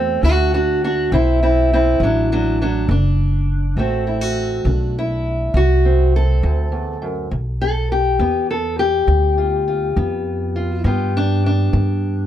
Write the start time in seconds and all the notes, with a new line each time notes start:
Already playing: E2 A3 C4 F#4
0.23 D2 D4 F#4
0.54 D4 F#4
0.84 D4 F#4
1.12 B1 D3 C4 E4
1.43 C4 E4
1.73 C4 E4
2.00 A1 D2 F#3 D4
2.32 F#3 D4
2.62 F#3 D4
2.89 F#1 D3 D4
3.77 A1 D2 A3 C4 F#4
4.07 E4
4.21 F#4
4.65 B1 D3 D4
4.99 E4
5.54 C2 D2 F#4
5.85 C4
6.16 A4
6.43 D2
6.72 E2
7.02 F#2
7.31 B1 G2
7.61 A4
7.92 G4
8.19 E2 D3 B3
8.51 A4
8.79 G4
9.07 D2 G2
9.38 F4
9.68 F4
9.96 F2 D3 B3
10.56 F4
10.84 G2 B3 F4 G4
11.17 D4
11.46 D4
11.73 G2 D3